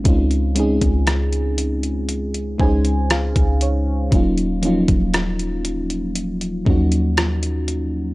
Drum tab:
HH |xxxxxxxxxx-xxxx-|xxxxxxxxxx-xxxx-|
SD |----r-------r---|----r-------r---|
BD |o--o------o--o--|o--o------o-----|